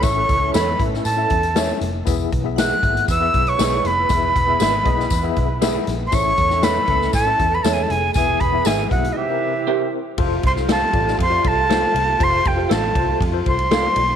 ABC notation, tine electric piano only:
X:1
M:4/4
L:1/16
Q:1/4=118
K:E
V:1 name="Tine electric piano"
[CEAe]2 z [CEAe]2 z [CEAe]2 z [CEAe]2 z [CEAe]2 z2 | [B,EGe]2 z [B,EGe]2 z [B,EGe]2 z [B,EGe]2 z [B,EGc]2 z2 | [B,EGe]2 z [B,EGe]2 z [B,EGd]2 z [B,EGe]2 z [B,EGe]2 z2 | [CEAe]2 z [CEAe]2 z [CEAe]2 z [CEAe]2 z [CEAe]2 z2 |
[B,EGe]2 z [B,EGe]2 z [B,EGe]2 z [=C=G_Be]2 z [CGB=c]2 z2 | [K:F] [FAc]2 z [FAc]2 z [FAd]2 z [FAd]2 z [FAc]2 z2 | [FAc]2 z [FAc]2 z [FAc]2 z [FAc]2 z [FAd]2 z2 |]
V:2 name="Tine electric piano" clef=bass
A,,6 z8 z2 | E,6 z8 z2 | E,6 z8 z2 | A,,6 z8 z2 |
E,6 z2 =C,6 z2 | [K:F] z16 | z16 |]